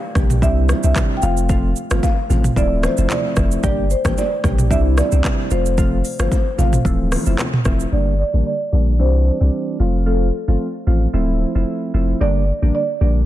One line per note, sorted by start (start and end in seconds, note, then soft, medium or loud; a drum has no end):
0.00 0.39 F5 loud
0.15 0.44 A#1 medium
0.15 0.36 G3 medium
0.15 0.36 A#3 medium
0.15 0.36 D4 medium
0.15 0.36 G4 medium
0.15 kick loud
0.15 cross-stick loud
0.15 high bongo medium
0.15 low conga medium
0.15 shaker medium
0.30 mid tom loud
0.30 shaker medium
0.42 0.73 C2 loud
0.42 0.80 G3 medium
0.42 0.80 C4 medium
0.42 0.80 D4 medium
0.42 0.80 E4 loud
0.42 0.81 E5 loud
0.42 kick medium
0.42 shaker medium
0.69 cross-stick loud
0.69 low bongo medium
0.69 shaker medium
0.83 0.93 C2 medium
0.83 1.20 G3 medium
0.83 1.20 C4 medium
0.83 1.20 D4 medium
0.83 1.20 E4 medium
0.83 1.14 E5 loud
0.83 shaker medium
0.96 kick medium
0.96 cross-stick loud
0.96 clap loud
0.96 high bongo medium
0.96 low bongo medium
0.96 low conga medium
0.96 shaker medium
1.17 1.23 G5 medium
1.22 1.74 F1 loud
1.22 1.47 F3 medium
1.22 1.47 A3 medium
1.22 1.48 C4 medium
1.22 1.48 F4 medium
1.22 2.02 F5 loud
1.22 shaker medium
1.37 shaker medium
1.49 1.70 F3 loud
1.49 1.70 A3 medium
1.49 1.70 C4 medium
1.49 1.70 F4 loud
1.49 kick loud
1.49 low conga medium
1.49 shaker medium
1.76 shaker medium
1.91 2.00 G1 loud
1.91 2.10 F3 medium
1.91 2.10 A3 medium
1.91 2.10 C4 medium
1.91 2.10 F4 medium
1.91 cross-stick loud
1.91 low bongo medium
1.91 shaker medium
2.03 2.58 F5 loud
2.03 kick loud
2.03 high bongo medium
2.03 shaker medium
2.30 2.50 A1 medium
2.30 2.50 F3 medium
2.30 2.50 A3 medium
2.30 2.50 C4 medium
2.30 2.50 F4 medium
2.30 high bongo medium
2.30 low conga medium
2.30 shaker medium
2.44 mid tom loud
2.44 shaker medium
2.56 2.88 D1 loud
2.56 2.94 F3 medium
2.56 2.94 A3 medium
2.56 2.95 C4 medium
2.56 2.95 E4 loud
2.56 2.82 D5 medium
2.56 kick medium
2.56 shaker medium
2.83 3.11 C5 medium
2.83 cross-stick loud
2.83 low bongo medium
2.83 shaker medium
2.97 3.07 F1 medium
2.97 3.34 F3 medium
2.97 3.34 A3 medium
2.97 3.34 C4 medium
2.97 3.34 E4 medium
2.97 shaker medium
3.10 3.60 D5 medium
3.10 clap loud
3.10 high bongo medium
3.10 low bongo medium
3.10 low conga medium
3.10 shaker medium
3.36 3.57 F1 loud
3.36 3.62 F3 medium
3.36 3.62 A3 medium
3.36 3.62 C4 medium
3.36 3.62 E4 medium
3.36 kick loud
3.36 cross-stick loud
3.36 shaker medium
3.51 shaker medium
3.63 3.95 G1 loud
3.63 3.84 G3 loud
3.63 3.84 A#3 medium
3.63 3.84 D4 medium
3.63 3.84 G4 loud
3.63 3.91 D5 loud
3.63 kick loud
3.63 low conga medium
3.63 shaker medium
3.90 4.18 C5 medium
3.90 shaker medium
4.05 4.14 A1 medium
4.05 4.24 G3 medium
4.05 4.24 A#3 medium
4.05 4.24 D4 medium
4.05 4.24 G4 medium
4.05 kick loud
4.05 cross-stick loud
4.05 low bongo medium
4.05 shaker medium
4.18 4.73 D5 medium
4.18 high bongo medium
4.18 shaker medium
4.44 4.72 A#1 medium
4.44 4.64 G3 medium
4.44 4.65 A#3 medium
4.44 4.65 D4 medium
4.44 4.65 G4 medium
4.44 kick loud
4.44 cross-stick loud
4.44 high bongo medium
4.44 low conga medium
4.44 shaker medium
4.58 mid tom loud
4.58 shaker loud
4.70 5.02 C2 loud
4.70 5.09 G3 medium
4.70 5.09 C4 medium
4.70 5.09 D4 medium
4.70 5.09 E4 loud
4.70 4.99 E5 loud
4.70 kick medium
4.70 shaker medium
4.98 5.48 D5 loud
4.98 cross-stick loud
4.98 low bongo medium
4.98 shaker medium
5.12 5.21 C2 medium
5.12 5.48 G3 medium
5.12 5.48 C4 medium
5.12 5.48 D4 medium
5.12 5.48 E4 medium
5.12 shaker medium
5.24 kick medium
5.24 cross-stick loud
5.24 clap loud
5.24 high bongo medium
5.24 low bongo medium
5.24 low conga medium
5.24 shaker medium
5.51 6.02 F1 loud
5.51 5.76 F3 medium
5.51 5.76 A3 medium
5.51 5.76 C4 medium
5.51 5.76 F4 medium
5.51 6.19 C5 medium
5.51 shaker medium
5.66 shaker medium
5.78 5.98 F3 loud
5.78 5.98 A3 medium
5.78 5.99 C4 medium
5.78 5.99 F4 loud
5.78 kick loud
5.78 low conga medium
5.78 shaker medium
6.05 open hi-hat medium
6.05 shaker medium
6.19 6.29 G1 medium
6.19 6.38 F3 medium
6.19 6.39 A3 medium
6.19 6.39 C4 medium
6.19 6.39 F4 medium
6.19 6.56 C5 medium
6.19 cross-stick loud
6.19 low bongo medium
6.19 shaker medium
6.32 kick medium
6.32 high bongo medium
6.32 shaker medium
6.58 6.78 A1 medium
6.58 6.79 F3 medium
6.58 6.79 A3 medium
6.58 6.79 C4 medium
6.58 6.79 F4 medium
6.58 7.62 F5 loud
6.58 high bongo medium
6.58 low conga medium
6.58 shaker medium
6.73 mid tom loud
6.73 shaker medium
6.85 7.16 D1 loud
6.85 7.23 E3 loud
6.85 7.23 F3 medium
6.85 7.23 A3 medium
6.85 7.23 C4 medium
6.85 kick medium
6.85 shaker medium
7.12 cross-stick loud
7.12 open hi-hat medium
7.12 low bongo medium
7.12 shaker medium
7.26 7.36 F1 medium
7.26 7.46 F3 medium
7.26 7.46 A3 medium
7.26 7.46 C4 medium
7.26 7.46 E4 medium
7.26 shaker medium
7.39 cross-stick loud
7.39 clap loud
7.39 high bongo medium
7.39 low bongo medium
7.39 low conga medium
7.39 shaker medium
7.53 mid tom loud
7.65 7.86 F1 loud
7.65 7.86 F3 medium
7.65 7.86 A3 medium
7.65 7.86 C4 medium
7.65 7.86 E4 medium
7.65 kick loud
7.65 cross-stick loud
7.65 shaker medium
7.80 shaker medium
7.92 8.23 G1 loud
7.92 8.13 D3 medium
7.92 8.13 G3 medium
7.92 8.13 A#3 medium
7.92 8.13 D4 medium
7.92 8.18 D5 loud
8.19 8.44 D5 loud
8.34 8.43 A1 medium
8.34 8.53 D3 medium
8.34 8.53 G3 medium
8.34 8.53 A#3 medium
8.34 8.53 D4 medium
8.46 9.01 D5 loud
8.72 9.01 A#1 medium
8.72 8.93 D3 medium
8.72 8.93 G3 medium
8.72 8.93 A#3 medium
8.72 8.93 D4 medium
8.99 9.31 C2 loud
8.99 9.37 E3 medium
8.99 9.37 G3 medium
8.99 9.37 C4 medium
8.99 9.38 D4 medium
8.99 10.03 C5 medium
9.41 9.50 C2 medium
9.41 9.77 E3 medium
9.41 9.77 G3 medium
9.41 9.77 C4 medium
9.41 9.77 D4 medium
9.79 10.31 F1 loud
9.79 10.04 F3 medium
9.79 10.05 A3 medium
9.79 10.05 C4 medium
9.79 10.05 F4 medium
10.06 10.27 F3 medium
10.06 10.27 A3 medium
10.06 10.27 C4 medium
10.06 10.27 F4 loud
10.06 11.90 A4 medium
10.48 10.57 G1 medium
10.48 10.67 F3 medium
10.48 10.67 A3 medium
10.48 10.67 C4 medium
10.48 10.67 F4 medium
10.87 11.07 A1 medium
10.87 11.07 F3 medium
10.87 11.07 A3 medium
10.87 11.07 C4 medium
10.87 11.08 F4 medium
11.13 11.45 D1 loud
11.13 11.52 F3 medium
11.13 11.52 A3 medium
11.13 11.52 C4 medium
11.13 11.52 E4 medium
11.55 11.64 F1 medium
11.55 11.91 F3 medium
11.55 11.91 A3 medium
11.55 11.91 C4 medium
11.55 11.91 E4 medium
11.94 12.14 F1 medium
11.94 12.19 F3 medium
11.94 12.19 A3 medium
11.94 12.19 C4 medium
11.94 12.19 E4 medium
12.21 12.52 G1 loud
12.21 12.41 D3 medium
12.21 12.41 G3 medium
12.21 12.41 A#3 medium
12.21 12.41 D4 loud
12.21 12.71 D5 loud
12.62 12.71 A1 medium
12.62 12.81 D3 medium
12.62 12.81 G3 medium
12.62 12.82 A#3 medium
12.62 12.82 D4 medium
12.75 13.26 D5 loud
13.01 13.26 A#1 medium
13.01 13.22 D3 medium
13.01 13.22 G3 medium
13.01 13.22 A#3 medium
13.01 13.22 D4 medium